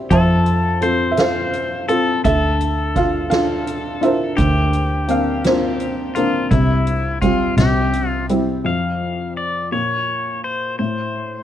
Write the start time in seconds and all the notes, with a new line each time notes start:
Already playing: E4 G4 C5 D5 E5
0.10 F2 F3 A4 C5 E5 A5, kick, closed hi-hat
0.46 closed hi-hat
0.81 C4 F4 A4 C5, closed hi-hat
1.12 E5
1.17 F4 A4 C5 F5, snare, closed hi-hat
1.53 closed hi-hat
1.89 C4 F4 A4, closed hi-hat
2.24 D2 D3 A4 E5, kick, closed hi-hat
2.61 closed hi-hat
2.95 D4 F4 F5, kick, closed hi-hat
3.30 D4 F4 A4 F5, snare, closed hi-hat
3.67 closed hi-hat
4.01 D4 E4 F4 C5 E5, closed hi-hat
4.05 A#4
4.37 D2 D3 G4, kick, closed hi-hat
4.73 closed hi-hat
5.08 A#3 C4 D4 F5, closed hi-hat
5.44 A#3 C4 D4 F4 C5, snare, closed hi-hat
5.80 closed hi-hat
6.15 A#3 C4 D4 F4, closed hi-hat
6.51 C2 C3 E4, kick, closed hi-hat
6.86 closed hi-hat
7.22 G3 C4 F4, kick, closed hi-hat
7.57 C2 C3 G4, snare, closed hi-hat
7.93 closed hi-hat
8.08 F4
8.29 G3 C4 E4, closed hi-hat
8.64 F2 F5
9.37 D5
9.72 A#2 C#5
10.44 C5
10.79 A2 C5